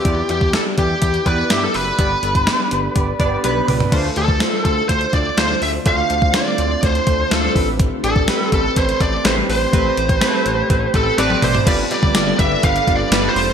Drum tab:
CC |----------------|----------------|x---------------|----------------|
HH |x-x-x-x-xxx-x-o-|x-xxx-x-x-x-x-o-|x-x-x-x-xxx-x-o-|x-x-x-x-xxx-x-o-|
TB |----------------|----------------|----------------|----------------|
SD |----o-------o---|----o-----------|----o-------o---|----o-------o---|
T1 |----------------|------------o---|----------------|----------------|
T2 |----------------|--------------o-|----------------|----------------|
FT |----------------|---------------o|----------------|----------------|
BD |o--o--o-o-o-----|o--o----o-o-----|o--o--o-o-o-----|o--o----o-o---o-|

CC |----------------|----------------|x---------------|
HH |x-x-x-x-xxx-x-o-|x-xxx-x-x-x-x-o-|x-x-x-x-xxx-x-o-|
TB |----------------|----x-----------|----x-------x---|
SD |----o-------o---|----o-------o---|----o-------o---|
T1 |----------------|-------------o--|----------------|
T2 |----------------|--------------o-|----------------|
FT |----------------|---------------o|----------------|
BD |o--o--o-o-o-----|o--o----o-o-----|o--o--o-o-o-----|